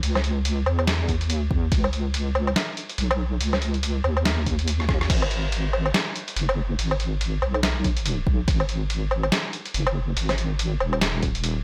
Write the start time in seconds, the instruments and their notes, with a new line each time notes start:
0.03 wobble bass C#2, closed hi-hat, ride
0.15 snare, low woodblock
0.24 closed hi-hat
0.45 closed hi-hat, ride
0.66 wobble bass E2, low woodblock
0.79 low woodblock
0.87 snare, closed hi-hat, ride
1.08 kick, closed hi-hat
1.21 closed hi-hat
1.25 wobble bass D#2
1.30 closed hi-hat, ride
1.51 wobble bass E2, kick
1.72 wobble bass C#2, kick, closed hi-hat, ride
1.84 low woodblock
1.93 closed hi-hat
2.14 closed hi-hat, ride
2.35 low woodblock
2.47 low woodblock
2.56 snare, closed hi-hat, ride
2.77 closed hi-hat
2.89 closed hi-hat
2.98 wobble bass B1, closed hi-hat, ride
3.11 low woodblock
3.41 wobble bass C#2, closed hi-hat, ride
3.53 snare, low woodblock
3.62 closed hi-hat
3.74 closed hi-hat
3.83 closed hi-hat, ride
4.04 wobble bass D#2, low woodblock
4.17 low woodblock
4.25 snare, closed hi-hat, ride
4.46 kick, closed hi-hat
4.59 closed hi-hat
4.68 closed hi-hat, ride
4.80 cross-stick
4.89 kick, cross-stick
5.01 cross-stick
5.10 wobble bass G#1, kick, closed hi-hat, crash, ride
5.22 low woodblock
5.31 closed hi-hat
5.52 closed hi-hat, ride
5.73 low woodblock
5.86 low woodblock
5.94 snare, closed hi-hat, ride
6.16 closed hi-hat
6.28 closed hi-hat
6.36 wobble bass F#1, closed hi-hat, ride
6.49 low woodblock
6.79 wobble bass G#1, closed hi-hat, ride
6.91 low woodblock
7.00 closed hi-hat
7.21 closed hi-hat, ride
7.42 wobble bass B1, low woodblock
7.54 low woodblock
7.63 snare, closed hi-hat, ride
7.84 kick, closed hi-hat
7.97 closed hi-hat
8.06 closed hi-hat, ride
8.27 wobble bass B1, kick
8.48 wobble bass G#1, kick, closed hi-hat, ride
8.60 low woodblock
8.69 closed hi-hat
8.90 closed hi-hat, ride
9.11 low woodblock
9.23 low woodblock
9.32 snare, closed hi-hat, ride
9.53 closed hi-hat
9.66 closed hi-hat
9.74 wobble bass F#1, closed hi-hat, ride
9.87 low woodblock
10.17 wobble bass G#1, closed hi-hat, ride
10.29 snare, closed hi-hat, low woodblock
10.38 closed hi-hat
10.59 closed hi-hat, ride
10.80 wobble bass D#1, low woodblock
10.93 low woodblock
11.01 snare, closed hi-hat, ride
11.22 kick, closed hi-hat
11.35 closed hi-hat
11.44 closed hi-hat, ride